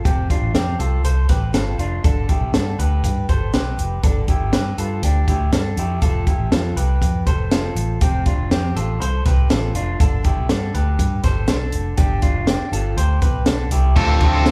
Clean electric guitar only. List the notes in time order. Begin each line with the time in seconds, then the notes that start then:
0.05 C4 G4
0.30 D4 F4
0.55 C4 G4
0.79 F4 A4
1.05 A4 C5
1.29 G4 B4
1.54 F4 A4
1.79 D4 F4
2.05 D4 A4
2.29 E4 G4
2.54 D4 A4
2.79 G4 B4
3.29 A4 C5
3.54 G4 B4
4.04 D4 A4
4.29 E4 G4
4.54 G4 B4
4.78 F4 A4
5.04 D4 G4
5.29 E4 G4
5.53 D4 A4
5.79 E4 G4
6.02 F4 A4
6.27 E4 G4
6.52 F4 A4
6.77 G4 B4
7.27 A4 C5
7.52 F4 A4
8.02 C4 G4
8.26 D4 F4
8.52 C4 G4
8.76 F4 A4
9.01 A4 C5
9.26 G4 B4
9.51 F4 A4
9.75 D4 F4
10.01 D4 A4
10.25 E4 G4
10.50 D4 A4
10.74 G4 B4
11.24 A4 C5
11.49 D4 A4
11.98 D4 G4
12.22 D4 F4
12.48 D4 G4
12.73 F4 A4
12.97 G4 C5
13.22 G4 B4
13.47 D4 A4
13.72 E4 G4
13.97 F4 A4
14.22 E4 G4
14.47 F4 A4